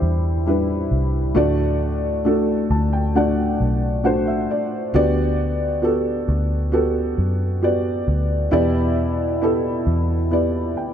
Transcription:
Already playing: felt piano G3 D4 E4 G4 C5
0.02 fingered electric bass E2
0.46 felt piano G3 D4 E4 B4
0.91 fingered electric bass C2
1.35 fingered electric bass D2, felt piano A2 A3 D4 F#4 D5
2.25 felt piano A3 D4 F#4 A4
2.70 fingered electric bass D2, felt piano A5
2.93 felt piano G5
3.15 felt piano A3 D4 F#4 D5 F#5
3.60 fingered electric bass B1
4.04 felt piano A3 D4 F#4 C5 F#5
4.27 felt piano E5
4.51 felt piano D5
4.94 fingered electric bass D2, felt piano D3 B3 F#4 G4 D5
5.82 felt piano B3 F#4 G4 A4
6.29 fingered electric bass D2
6.72 felt piano B3 F#4 G4 A4
7.18 fingered electric bass F#2
7.62 felt piano B3 F#4 G4 D5
8.08 fingered electric bass D2
8.51 fingered electric bass E2, felt piano B2 B3 E4 G4 D5
9.41 felt piano B3 E4 G4 A4
9.87 fingered electric bass E2
10.31 felt piano B3 E4 G4 D5
10.76 fingered electric bass D2, felt piano G5

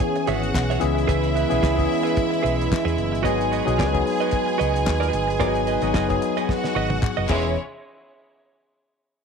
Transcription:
Already playing: french horn section E3 B3 C#4 G#4, tine electric piano E3 B3 C#4 G#4, violin section G#4 G#5
0.00 kick
0.15 muted clean electric guitar stroke, closed hi-hat
0.27 fingered electric bass G#1, violin section F#4 F#5, clean electric guitar G#4 C#5 E5, closed hi-hat
0.43 muted clean electric guitar stroke, closed hi-hat
0.54 fingered electric bass B1, muted clean electric guitar stroke, kick, snare, clap
0.70 clean electric guitar G#4 C#5 E5, closed hi-hat
0.80 fingered electric bass C#2, french horn section C#3 G#3 B3 E4, tine electric piano E3 B3 C#4 G#4, violin section E4 E5, closed hi-hat
0.95 muted clean electric guitar stroke, closed hi-hat
1.07 fingered electric bass C#2, clean electric guitar G#4 B4 E5, kick, closed hi-hat
1.24 closed hi-hat
1.34 clean electric guitar G#4 B4 E5, closed hi-hat
1.49 fingered electric bass B1, tine electric piano E3 B3 C#4 G#4, clean electric guitar G#4 B4 E5, closed hi-hat
1.62 fingered electric bass C#2, clean electric guitar G#4 B4 E5, kick, snare, clap
1.76 tine electric piano E3 B3 C#4 G#4, muted clean electric guitar stroke, kick, closed hi-hat
1.88 muted clean electric guitar stroke, open hi-hat
2.03 clean electric guitar G#4 B4 E5, closed hi-hat
2.17 kick, closed hi-hat
2.31 muted clean electric guitar stroke, closed hi-hat
2.43 fingered electric bass B1, clean electric guitar G#4 B4 E5, closed hi-hat
2.57 muted clean electric guitar stroke
2.61 closed hi-hat
2.69 muted clean electric guitar stroke, kick, snare, clap
2.85 fingered electric bass E2, clean electric guitar G#4 B4 E5, closed hi-hat
2.97 fingered electric bass F#1, muted clean electric guitar stroke, closed hi-hat
3.12 fingered electric bass G1, muted clean electric guitar stroke, closed hi-hat
3.23 fingered electric bass G#1, tine electric piano F#3 B3 D#4 G#4, french horn section D#4 F#4 B4, clean electric guitar F#4 B4 D#5, violin section G#4 G#5, kick, closed hi-hat
3.41 closed hi-hat
3.51 clean electric guitar F#4 B4 D#5, closed hi-hat
3.65 fingered electric bass B1, tine electric piano F#3 B3 D#4 G#4, clean electric guitar F#4 B4 D#5, closed hi-hat
3.78 fingered electric bass C#2, clean electric guitar F#4 B4 D#5, kick, snare, clap
3.92 tine electric piano F#3 B3 D#4 G#4, muted clean electric guitar stroke, kick, closed hi-hat
4.05 muted clean electric guitar stroke, open hi-hat
4.20 clean electric guitar F#4 B4 D#5, closed hi-hat
4.31 kick, closed hi-hat
4.46 muted clean electric guitar stroke, closed hi-hat
4.58 fingered electric bass C#2, clean electric guitar F#4 B4 D#5, closed hi-hat
4.74 muted clean electric guitar stroke, closed hi-hat
4.86 fingered electric bass D#2, muted clean electric guitar stroke, kick, snare, clap
5.00 clean electric guitar F#4 B4 D#5, closed hi-hat
5.12 fingered electric bass G1, muted clean electric guitar stroke, closed hi-hat
5.27 muted clean electric guitar stroke, closed hi-hat
5.38 fingered electric bass G#1, tine electric piano F#3 B3 D#4 G#4, clean electric guitar F#4 B4 D#5, french horn section G#4, kick, closed hi-hat
5.55 closed hi-hat
5.66 clean electric guitar F#4 B4 D#5, closed hi-hat
5.82 fingered electric bass G#1, tine electric piano F#3 B3 D#4 G#4, clean electric guitar F#4 B4 D#5, closed hi-hat
5.94 fingered electric bass F#1, clean electric guitar F#4 B4 D#5, kick, snare, clap
6.08 tine electric piano F#3 B3 D#4 G#4, kick, closed hi-hat
6.22 muted clean electric guitar stroke, closed hi-hat
6.37 clean electric guitar F#4 B4 D#5, closed hi-hat
6.49 violin section F#4 F#5, kick, snare
6.64 muted clean electric guitar stroke, snare
6.75 fingered electric bass G#1, clean electric guitar F#4 B4 D#5
6.90 muted clean electric guitar stroke, high tom
7.02 muted clean electric guitar stroke, kick, clap, mid tom
7.17 fingered electric bass F#1, clean electric guitar F#4 B4 D#5
7.29 fingered electric bass E1, tine electric piano E3 B3 C#4 G#4, french horn section E3 E4 G#4 C#5, violin section G#3 E4 C#5, clean electric guitar G#4 C#5 E5, kick, clap, crash

